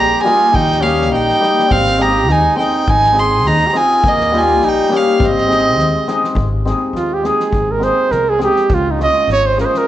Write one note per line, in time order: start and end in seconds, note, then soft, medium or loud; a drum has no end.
0.00 0.13 A#1 medium
0.00 0.22 G3 medium
0.00 0.22 G4 medium
0.00 0.23 A#5 loud
0.23 0.80 G3 medium
0.23 0.46 A#3 medium
0.23 0.46 D#4 medium
0.23 0.54 F4 medium
0.23 0.46 G4 medium
0.23 0.56 G#5 loud
0.23 snare soft
0.53 1.12 D#2 medium
0.53 0.83 D#4 medium
0.53 0.84 G5 loud
0.53 kick medium
0.72 snare soft
0.81 1.39 G3 medium
0.81 1.04 A#3 medium
0.81 1.11 C#4 medium
0.81 1.05 D#4 medium
0.81 1.04 G4 medium
0.81 1.12 F5 medium
0.81 snare soft
1.01 snare soft
1.11 1.29 A#1 medium
1.11 1.71 D#4 medium
1.11 1.73 G5 loud
1.11 snare soft
1.29 snare soft
1.40 1.76 G3 medium
1.40 1.62 A#3 medium
1.40 1.63 D#4 medium
1.40 1.63 G4 medium
1.40 snare soft
1.59 snare soft
1.69 2.29 G#1 medium
1.69 2.02 C4 medium
1.69 2.03 F5 loud
1.69 kick medium
1.87 snare soft
1.98 2.54 G#3 medium
1.98 2.20 C4 medium
1.98 2.20 D#4 medium
1.98 2.31 G4 medium
1.98 2.21 G#4 medium
1.98 2.33 A#5 loud
1.98 snare soft
2.29 2.46 D#2 medium
2.29 2.58 D#4 medium
2.29 2.58 G#5 medium
2.29 snare soft
2.55 3.11 G#3 medium
2.55 2.78 C4 medium
2.55 2.79 D#4 medium
2.55 2.87 D#4 medium
2.55 2.79 G#4 medium
2.55 2.91 G5 medium
2.55 snare soft
2.87 3.46 G#1 medium
2.87 3.20 D#4 medium
2.87 3.20 G#5 loud
2.87 kick loud
3.04 snare soft
3.12 3.72 G#3 medium
3.12 3.36 C4 medium
3.12 3.36 D#4 medium
3.12 3.37 G#4 medium
3.17 3.50 G#4 medium
3.17 3.48 C6 loud
3.17 snare soft
3.46 3.63 D#2 medium
3.46 3.69 D#4 loud
3.46 3.69 A#5 loud
3.46 snare soft
3.67 3.78 G4 soft
3.67 3.78 A#5 medium
3.73 4.09 G#3 medium
3.73 3.95 C4 medium
3.73 3.95 D#4 medium
3.73 4.07 F4 medium
3.73 3.96 G#4 medium
3.73 4.10 G#5 loud
3.73 snare soft
4.04 4.61 D#2 medium
4.04 4.36 A#3 medium
4.04 kick medium
4.08 4.39 D#5 loud
4.20 snare soft
4.32 4.87 G3 medium
4.32 4.54 A#3 medium
4.32 4.55 D#4 medium
4.32 4.66 F4 medium
4.32 4.55 G4 medium
4.32 snare soft
4.38 4.69 G#5 loud
4.61 4.79 A#1 medium
4.61 4.94 D#4 medium
4.61 snare soft
4.68 4.98 G5 loud
4.88 5.26 G3 medium
4.88 5.11 A#3 medium
4.88 5.12 D#4 medium
4.88 5.12 G4 medium
4.88 snare soft
4.93 5.21 C#4 medium
4.93 5.26 F5 medium
5.19 5.77 G#1 medium
5.19 6.08 C4 medium
5.19 kick loud
5.25 6.10 D#5 loud
5.38 snare soft
5.46 6.06 G#3 medium
5.46 5.69 C4 medium
5.46 5.70 D#4 medium
5.46 5.70 G#4 medium
5.51 snare soft
5.77 5.95 D#2 medium
5.77 snare soft
6.08 6.42 G#3 medium
6.08 6.29 C4 medium
6.08 6.29 D#4 medium
6.08 6.30 G#4 medium
6.08 snare soft
6.24 snare soft
6.35 6.71 G#1 loud
6.35 kick medium
6.65 7.22 G#3 medium
6.65 6.87 C4 medium
6.65 6.87 D#4 medium
6.65 6.88 G#4 medium
6.65 snare soft
6.93 7.29 D#2 medium
6.93 7.15 F4 medium
6.93 snare soft
7.14 7.28 G4 medium
7.23 7.77 G#3 medium
7.23 7.46 C4 medium
7.23 7.46 D#4 medium
7.23 7.46 G#4 medium
7.23 7.73 G#4 medium
7.23 snare soft
7.40 snare soft
7.52 7.88 G#1 medium
7.52 kick medium
7.72 7.86 A#4 medium
7.79 8.38 G#3 medium
7.79 8.03 C4 medium
7.79 8.03 D#4 medium
7.79 8.03 G#4 medium
7.79 snare soft
7.84 8.14 C5 medium
8.11 8.46 C2 medium
8.11 8.31 A#4 medium
8.11 snare soft
8.30 8.42 G#4 medium
8.39 8.75 G#3 medium
8.39 8.61 C4 medium
8.39 8.61 D#4 medium
8.39 8.62 G#4 medium
8.39 snare soft
8.44 8.76 G4 medium
8.56 snare soft
8.70 9.05 C#2 loud
8.70 kick medium
8.74 8.93 F4 medium
8.91 9.02 D#4 medium
8.98 9.56 G#3 medium
8.98 9.21 C#4 medium
8.98 9.21 F4 medium
8.98 9.21 G#4 medium
8.98 snare soft
9.03 9.28 D#5 loud
9.28 9.63 G#1 medium
9.28 snare soft
9.32 9.48 C#5 loud
9.47 9.59 C5 medium
9.57 9.88 G#3 medium
9.57 9.79 C#4 medium
9.57 9.79 F4 medium
9.57 9.79 G#4 medium
9.57 9.67 A#4 medium
9.57 snare soft
9.66 9.79 C5 medium
9.74 9.88 A#4 medium
9.74 snare soft